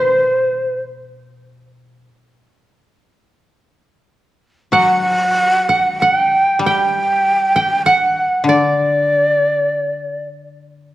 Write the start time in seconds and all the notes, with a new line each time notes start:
Already playing: B2 C5
4.72 F#3 F#5
4.78 F#5
5.69 F#5
6.01 F#5
6.13 G5
6.59 G3
6.65 G5
7.56 G5
7.86 F#5
8.44 D3 D5
8.49 D5